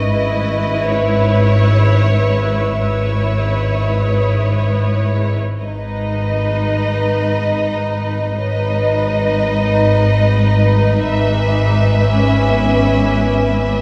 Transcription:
Already playing: vibraphone C#4 C#6, violin section D#5
0.03 double bass section G#1, cello section G#2, violin section E4 B4 C#6
0.94 violin section C#5 E6
2.33 vibraphone E5
2.79 double bass section G#1, cello section G#2, violin section E4 B4 C#5
4.07 violin section D#6
5.61 double bass section G#1, cello section G#2, violin section D#4 B4 D#5
8.37 double bass section G#1, cello section G#2, violin section D#4 B4 D#5, vibraphone C#5
11.09 double bass section G#1, cello section G#2, violin section B4 E5 G#5 D6
12.02 violin section C#4
12.49 vibraphone B3 B4

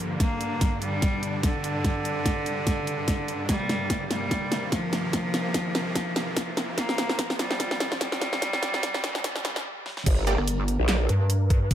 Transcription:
Already playing: supersaw synth G2 D3 A#3, cello F3, riser
0.20 cello A#3, supersaw synth D4, kick, snare, closed hi-hat
0.41 closed hi-hat
0.61 kick, snare, closed hi-hat
0.82 cello G3, closed hi-hat
1.02 kick, snare, closed hi-hat
1.23 closed hi-hat
1.43 cello D3, kick, snare, closed hi-hat
1.64 closed hi-hat
1.84 kick, snare, closed hi-hat
2.05 closed hi-hat
2.26 kick, snare, closed hi-hat
2.46 closed hi-hat
2.67 kick, snare, closed hi-hat
2.87 closed hi-hat
3.08 kick, snare, closed hi-hat
3.28 closed hi-hat
3.49 supersaw synth C3 A#3, cello G3, kick, snare, closed hi-hat
3.69 snare, closed hi-hat
3.90 kick, snare, closed hi-hat
4.10 cello G3, snare, closed hi-hat
4.31 kick, snare, closed hi-hat
4.52 snare, closed hi-hat
4.72 cello F3, kick, snare, closed hi-hat
4.93 snare, closed hi-hat
5.13 kick, snare, closed hi-hat
5.34 snare, closed hi-hat
5.54 kick, snare, closed hi-hat
5.75 snare, closed hi-hat
5.95 kick, snare, closed hi-hat
6.16 snare, closed hi-hat
6.37 kick, snare, closed hi-hat
6.57 snare, closed hi-hat
6.78 supersaw synth F3, cello A#3, kick, snare, closed hi-hat
6.89 snare
6.98 snare, closed hi-hat
7.09 snare
7.19 kick, snare, closed hi-hat
7.30 snare
7.39 cello G3, snare, closed hi-hat
7.51 snare
7.60 kick, snare, closed hi-hat
7.71 snare
7.80 snare, closed hi-hat
7.92 snare
8.01 cello G3, kick, snare, closed hi-hat
8.12 snare
8.22 snare, closed hi-hat
8.33 snare
8.42 kick, snare, closed hi-hat
8.53 snare
8.63 snare, closed hi-hat
8.74 snare
8.83 kick, snare, closed hi-hat
8.94 snare
9.04 snare, closed hi-hat
9.15 snare
9.24 kick, snare, closed hi-hat
9.36 snare
9.45 snare, closed hi-hat
9.56 snare
9.86 snare
9.97 snare
10.06 wobble bass G1, supersaw synth G3 D4 A#4, kick, closed hi-hat, crash
10.27 synth stab A#3 G4 D5, closed hi-hat
10.38 wobble bass G1, cross-stick
10.48 closed hi-hat
10.68 closed hi-hat
10.79 wobble bass A#1
10.89 synth stab A#3 G4 D5, snare, clap, closed hi-hat
11.09 wobble bass G2, closed hi-hat
11.30 closed hi-hat
11.50 kick, cross-stick, closed hi-hat
11.71 wobble bass G1, kick, closed hi-hat

